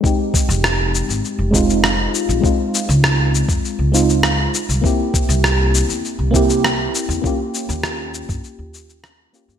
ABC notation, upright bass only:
X:1
M:4/4
L:1/16
Q:1/4=100
K:Fm
V:1 name="Upright bass" clef=bass
z3 F,,,3 z A,,, z F,,,4 z2 B,,, | z3 D,,3 z F,, z D,,4 z2 C,, | z3 C,,3 z =E,, z C,,4 z2 E,, | z3 E,,3 z G,, z E,,4 z2 G,, |]